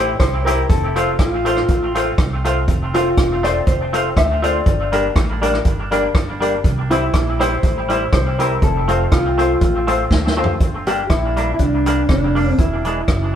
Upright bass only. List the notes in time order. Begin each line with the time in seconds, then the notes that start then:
Already playing: A1
0.20 C2
0.70 F1
1.19 A1
1.69 A1
2.18 C2
2.68 F1
3.18 E1
3.67 F1
4.17 D2
4.66 G1
5.16 A1
5.66 G1
6.15 G1
6.65 C2
7.14 A#1
7.63 A1
8.13 C2
8.62 F1
9.12 C2
9.62 A1
10.11 D2
10.61 G1
11.10 A#1
11.60 C2
12.09 F1
12.59 E1
13.08 F#1